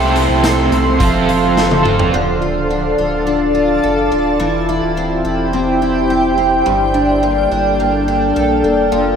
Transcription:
Already playing: sub bass C2, overdriven electric guitar C3 A3 C4 E4 A4, twelve-string acoustic guitar C3 C4 A4, ambient pad A4 C5 E5 C6
0.16 twelve-string acoustic guitar E4, closed hi-hat
0.29 sub bass C2
0.44 twelve-string acoustic guitar A4, snare, closed hi-hat, tambourine
0.72 sub bass C2, twelve-string acoustic guitar E4, closed hi-hat
0.99 sub bass F1, overdriven electric guitar F3 C4 F4, twelve-string acoustic guitar F3, kick, closed hi-hat
1.04 overdriven electric guitar A4
1.29 twelve-string acoustic guitar F4, closed hi-hat
1.57 twelve-string acoustic guitar A4, snare
1.71 high tom
1.83 twelve-string acoustic guitar F4, overdriven electric guitar F4 A4, mid tom
1.89 overdriven electric guitar C4
1.99 floor tom
2.14 sub bass D1, twelve-string acoustic guitar D3, ambient pad F4 A4 D5 A5
2.42 twelve-string acoustic guitar F4
2.70 twelve-string acoustic guitar D4
2.98 sub bass D1, twelve-string acoustic guitar F4
3.27 twelve-string acoustic guitar D4
3.55 twelve-string acoustic guitar F4
3.84 sub bass F1, twelve-string acoustic guitar A4
4.12 sub bass D1, twelve-string acoustic guitar D4
4.40 sub bass E1, twelve-string acoustic guitar E3, ambient pad E4 G4 C5 G5
4.69 twelve-string acoustic guitar E4
4.83 sub bass D1
4.97 twelve-string acoustic guitar C4
5.25 sub bass E1, twelve-string acoustic guitar E4
5.53 twelve-string acoustic guitar C4
5.82 twelve-string acoustic guitar E4
6.10 twelve-string acoustic guitar G4
6.38 twelve-string acoustic guitar C4
6.66 sub bass G1, twelve-string acoustic guitar G2, ambient pad A#3 D4 A4
6.94 twelve-string acoustic guitar D4
7.23 twelve-string acoustic guitar A#3
7.52 sub bass G1, twelve-string acoustic guitar D4
7.80 twelve-string acoustic guitar A#3
8.08 twelve-string acoustic guitar D4
8.36 sub bass A#1, twelve-string acoustic guitar A4
8.64 sub bass E1, twelve-string acoustic guitar A#3
8.92 sub bass F1, twelve-string acoustic guitar F3

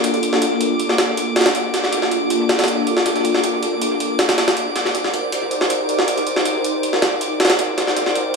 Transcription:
Already playing: string machine A#3 D4 F4 G4 A4, synth texture D6
0.04 closed hi-hat
0.14 closed hi-hat
0.23 closed hi-hat
0.33 snare
0.42 closed hi-hat
0.61 closed hi-hat
0.80 closed hi-hat
0.89 snare
0.98 snare, closed hi-hat
1.17 closed hi-hat
1.36 snare, closed hi-hat
1.41 snare, closed hi-hat
1.46 snare, closed hi-hat
1.55 string machine A#3 D4 F4 G4 A4, closed hi-hat
1.74 snare, closed hi-hat
1.84 snare
1.93 closed hi-hat
2.02 snare
2.11 closed hi-hat
2.30 closed hi-hat
2.49 snare, closed hi-hat
2.59 snare, closed hi-hat
2.64 snare, closed hi-hat
2.68 closed hi-hat
2.87 closed hi-hat
2.97 snare
3.06 closed hi-hat
3.16 closed hi-hat
3.25 closed hi-hat
3.35 snare
3.44 closed hi-hat
3.63 closed hi-hat
3.82 closed hi-hat
4.00 closed hi-hat
4.19 snare, closed hi-hat
4.29 snare, closed hi-hat
4.38 snare, closed hi-hat
4.48 snare, closed hi-hat
4.57 string machine D#4 G4 A#4 C5 D5, closed hi-hat
4.76 snare, closed hi-hat
4.85 snare
4.95 closed hi-hat
5.04 snare
5.14 closed hi-hat
5.32 closed hi-hat
5.51 closed hi-hat
5.61 snare
5.70 closed hi-hat
5.89 closed hi-hat
5.99 snare
6.08 closed hi-hat
6.18 closed hi-hat
6.27 closed hi-hat
6.36 snare
6.45 closed hi-hat
6.64 closed hi-hat
6.83 closed hi-hat
6.93 snare
7.02 snare, closed hi-hat
7.21 closed hi-hat
7.40 snare, closed hi-hat
7.45 snare, closed hi-hat
7.50 snare, closed hi-hat
7.59 string machine D#4 G4 A#4 C5 D5, closed hi-hat
7.78 snare, closed hi-hat
7.87 snare
7.97 closed hi-hat
8.06 snare
8.15 closed hi-hat

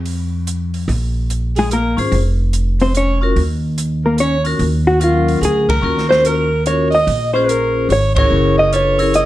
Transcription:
Already playing: upright bass F2
0.06 open hi-hat
0.47 closed hi-hat
0.74 open hi-hat
0.88 upright bass A#1, kick, open hi-hat
1.30 closed hi-hat
1.56 hollow-body jazz guitar G#3 G#4, alto saxophone G#4, open hi-hat
1.71 hollow-body jazz guitar A#3 A#4, alto saxophone A#4, closed hi-hat
1.97 upright bass G#1, vibraphone C#4 F4 G#4 C5, open hi-hat
2.12 upright bass F1, kick, open hi-hat
2.53 closed hi-hat
2.80 hollow-body jazz guitar C4 C5, alto saxophone C5, open hi-hat
2.95 hollow-body jazz guitar C#4 C#5, alto saxophone C#5, closed hi-hat
3.21 vibraphone C#4 F4 F#4 A#4
3.36 upright bass D#2, kick, open hi-hat
3.78 closed hi-hat
4.04 hollow-body jazz guitar A#3 A#4, alto saxophone A#4
4.18 hollow-body jazz guitar C#4 C#5, alto saxophone C#5, closed hi-hat
4.44 vibraphone C#4 F4 F#4 A#4, open hi-hat
4.59 upright bass D#2, kick, open hi-hat
4.87 hollow-body jazz guitar F#4, alto saxophone F#4
5.00 vibraphone F#3 C#4 F4 A#4, hollow-body jazz guitar F4, closed hi-hat
5.04 alto saxophone F4
5.28 open hi-hat
5.41 upright bass D2, alto saxophone G#4, hollow-body jazz guitar G#4, closed hi-hat
5.69 alto saxophone A#4, hollow-body jazz guitar A#4, kick, ride
5.82 upright bass D#2, vibraphone C#4 F4 F#4 A#4
5.98 snare
6.09 alto saxophone C5, hollow-body jazz guitar C5, snare
6.25 alto saxophone A#4, hollow-body jazz guitar A#4, closed hi-hat
6.66 vibraphone C#4 F4 F#4 A#4, alto saxophone C#5, hollow-body jazz guitar C#5, closed hi-hat
6.90 alto saxophone D#5, open hi-hat
6.95 hollow-body jazz guitar D#5
7.07 upright bass A#1, kick, open hi-hat
7.33 vibraphone C#4 F4 G#4 C5, alto saxophone C5, hollow-body jazz guitar C5
7.49 alto saxophone A#4, hollow-body jazz guitar A#4, closed hi-hat
7.89 upright bass G#1, alto saxophone C#5, hollow-body jazz guitar C#5, open hi-hat
8.15 vibraphone C#4 E4 G#4 A#4, alto saxophone C#5, hollow-body jazz guitar C#5, kick, ride
8.30 upright bass F#1
8.58 alto saxophone D#5, hollow-body jazz guitar D#5
8.72 vibraphone D4 F4 A4 B4, alto saxophone C#5, closed hi-hat
8.76 hollow-body jazz guitar C#5
8.98 vibraphone C#4 E4 G#4 A#4, open hi-hat
9.14 alto saxophone D#5, hollow-body jazz guitar D#5, closed hi-hat

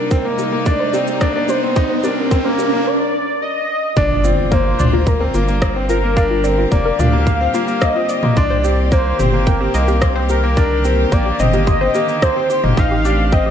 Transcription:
Already playing: analog synth bass C2, string section C3 G3 A#3 D#4, soft synth lead A#4, riser
0.11 grand piano C4, kick, shaker
0.25 grand piano A#3
0.39 analog synth bass G1, synth arpeggio sound G4, mid tom, shaker
0.52 grand piano A#3
0.66 grand piano D4, soft synth lead D5, synth arpeggio sound C6, kick, shaker
0.80 synth arpeggio sound C5
0.93 analog synth bass C2, grand piano C4, synth arpeggio sound G4, shaker
1.07 shaker
1.21 grand piano D4, kick, cross-stick, shaker
1.35 grand piano D4
1.49 synth arpeggio sound G4, soft synth lead C5, shaker
1.63 grand piano C4
1.76 grand piano D#4, synth arpeggio sound C6, kick, shaker
1.90 synth arpeggio sound C5
2.04 grand piano D4, synth arpeggio sound G4, soft synth lead A#4, shaker
2.31 analog synth bass A#1, grand piano C4, synth arpeggio sound C6, kick, shaker
2.45 grand piano A#3, synth arpeggio sound C5
2.59 analog synth bass G1, synth arpeggio sound G4, mid tom, shaker
2.73 grand piano A#3
2.87 soft synth lead D5
3.42 soft synth lead D#5
3.97 analog synth bass G1, string section D3 G3 A#3 F4, grand piano D4, soft synth lead D5, kick, impact, shaker
4.24 grand piano C4, synth arpeggio sound F4, shaker
4.52 grand piano A#3, soft synth lead C5, synth arpeggio sound F5, kick, shaker
4.66 synth arpeggio sound F4
4.79 analog synth bass D2, grand piano D4, synth arpeggio sound D5, mid tom, shaker
4.93 grand piano A#3, synth arpeggio sound F4
5.07 soft synth lead A#4, synth arpeggio sound A#5, kick, shaker
5.20 grand piano C4, synth arpeggio sound A#4
5.34 analog synth bass G1, grand piano A#3, synth arpeggio sound F4, shaker
5.48 grand piano A#3, shaker
5.62 kick, cross-stick, shaker
5.76 grand piano C4
5.89 synth arpeggio sound F4, soft synth lead A#4, shaker
6.04 grand piano A#3
6.17 grand piano D4, string section G4, synth arpeggio sound F5, kick, shaker
6.31 synth arpeggio sound F4
6.44 grand piano C4, synth arpeggio sound D5, shaker
6.58 synth arpeggio sound F4
6.72 analog synth bass F1, grand piano A#3, soft synth lead D5, synth arpeggio sound A#5, kick, shaker
6.86 synth arpeggio sound A#4
6.99 analog synth bass D2, grand piano D4, synth arpeggio sound F4, soft synth lead F5, mid tom, shaker
7.13 grand piano A#3
7.27 kick, shaker
7.41 grand piano C4
7.54 grand piano A#3, synth arpeggio sound F4, shaker
7.68 grand piano A#3, shaker
7.82 soft synth lead D#5, synth arpeggio sound F5, kick, cross-stick, shaker
7.96 grand piano C4, synth arpeggio sound F4
8.09 synth arpeggio sound D5, shaker
8.23 grand piano A#3, synth arpeggio sound F4, mid tom
8.36 analog synth bass C2, string section D#3 C4 G4, grand piano D4, soft synth lead D5, synth arpeggio sound C6, kick, shaker
8.50 synth arpeggio sound C5
8.64 grand piano C4, synth arpeggio sound G4, shaker
8.92 grand piano A#3, soft synth lead C5, kick, shaker
9.19 analog synth bass G1, grand piano C4, synth arpeggio sound G4, mid tom, shaker
9.33 grand piano A#3
9.47 soft synth lead A#4, synth arpeggio sound G5, kick, shaker
9.61 grand piano C4, synth arpeggio sound G4
9.74 analog synth bass C2, grand piano A#3, synth arpeggio sound D#5, shaker
9.88 grand piano A#3, synth arpeggio sound G4, shaker
10.02 synth arpeggio sound C6, kick, cross-stick, shaker
10.16 grand piano C4, synth arpeggio sound C5
10.29 synth arpeggio sound G4, soft synth lead A#4, shaker
10.44 grand piano A#3
10.57 string section D3, grand piano D4, kick, shaker
10.85 grand piano C4, synth arpeggio sound G4, shaker
11.12 analog synth bass A#1, grand piano A#3, soft synth lead D5, synth arpeggio sound G5, kick, shaker
11.26 synth arpeggio sound G4
11.39 analog synth bass G1, grand piano C4, soft synth lead D#5, synth arpeggio sound D#5, mid tom, shaker
11.53 grand piano A#3, synth arpeggio sound G4, shaker
11.67 synth arpeggio sound C6, kick, shaker
11.81 grand piano C4, synth arpeggio sound C5
11.95 grand piano A#3, synth arpeggio sound G4, shaker
12.09 grand piano A#3, shaker
12.22 soft synth lead C5, kick, cross-stick, shaker
12.36 grand piano C4
12.50 synth arpeggio sound G4, shaker
12.63 analog synth bass G1, grand piano A#3, synth arpeggio sound D#5, mid tom
12.77 analog synth bass A1, string section A3 C4, grand piano D#4, soft synth lead F5, kick, shaker
12.91 synth arpeggio sound G4
13.05 grand piano D4, synth arpeggio sound G4, shaker
13.32 grand piano C4, soft synth lead D#5, synth arpeggio sound G5, kick, shaker
13.46 synth arpeggio sound G4

